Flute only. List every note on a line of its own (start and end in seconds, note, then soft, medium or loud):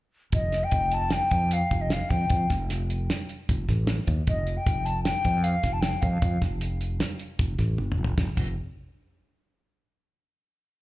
0.34 0.65 D#5 medium
0.64 0.95 G5 medium
0.94 1.15 A5 medium
1.13 1.55 G5 medium
1.53 1.83 F5 medium
1.81 1.94 D#5 medium
1.92 2.11 F5 medium
2.10 2.49 G5 medium
4.28 4.59 D#5 medium
4.57 4.87 G5 medium
4.86 5.03 A5 medium
5.04 5.45 G5 medium
5.44 5.74 F5 medium
5.73 5.83 A5 medium
5.81 6.03 G5 medium
6.01 6.41 F5 medium